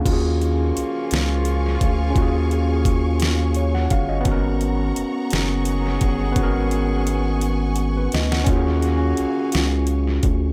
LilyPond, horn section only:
\new Staff \with { instrumentName = "Horn section" } { \time 6/8 \key ees \minor \tempo 4. = 57 <des f bes f'>2.~ | <des f bes f'>2~ <des f bes f'>8 r8 | r4. <ees aes des' aes'>4.~ | <ees aes des' aes'>2~ <ees aes des' aes'>8 r8 |
<des ges bes ges'>2~ <des ges bes ges'>8 r8 | }